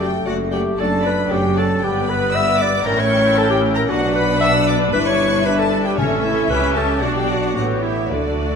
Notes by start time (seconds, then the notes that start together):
Already playing: F#1 F#2 A3
0.00 A3 F#4 G4 G5
0.26 F#1 F#2 A3 F#4 D5 F#5
0.52 A3 F#4 G4 D5 G5
0.78 F#1 F#2 A3 D4 F#4 A4 D5 A5
1.03 A3 F#4 B4 D5 B5
1.28 F#1 F#2 A3 C#4 F#4 G4 D5 G5
1.55 A3 F#4 A4 D5 A5
1.81 G1 G2 B3 G4 B4 D5 G5
2.06 B4 B5
2.32 E5 E6
2.59 D5 D6
2.84 A1 A2 C#4 E4 A#4 G5 A#5
2.97 C#5 C#6
3.37 A4 A5
3.50 G4 G5
3.75 A#4 A#5
3.88 B1 B2 D4 F#4 B4 F#5
4.15 B4 B5
4.41 E5 E6
4.67 D5 D6
4.92 G1 G2 E4 B4 E5 B5
5.05 C#5 C#6
5.45 D4 B4 B5
5.59 A4 A5
5.85 G4 G5
5.97 A1 A2 A3 C#4 A4 C#5 E5
6.23 E4 E5
6.49 C#2 C#3 C#4 G4 B4 B5
6.75 A4 A5
7.01 B1 B2 D4 F#4 D5 F#5
7.16 G4 G5
7.29 F#4 F#5
7.55 A1 A2 A3 B3 F#4 G4 C#5 F#5
7.82 E4 E5
8.10 D2 D3 A3 D4 F#4 D5
8.19 D3
8.26 D3
8.35 D3
8.50 D3